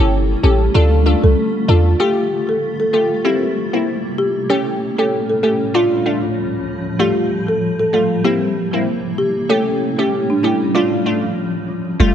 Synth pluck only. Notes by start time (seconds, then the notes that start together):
0.00 C#4 G4 A4
0.43 C#4 G4 A4
0.74 D4 F4 A4
1.06 D4 F4 A4
1.68 D4 F4 A4
2.00 A3 F4 G4
2.93 A3 F4 G4
3.25 A#3 C4 E4
3.73 A#3 C4 E4
4.50 A3 C#4 G4
4.98 A3 C#4 G4
5.43 A3 C#4 G4
5.74 A3 D4 F4
6.06 A3 D4 F4
6.99 G3 A3 F4
7.93 G3 A3 F4
8.24 A#3 C4 E4
8.73 A#3 C4 E4
9.49 A3 C#4 G4
9.98 A3 C#4 G4
10.44 A3 C#4 G4
10.75 A3 D4 F4
11.06 A3 D4 F4
11.99 G3 A3 F4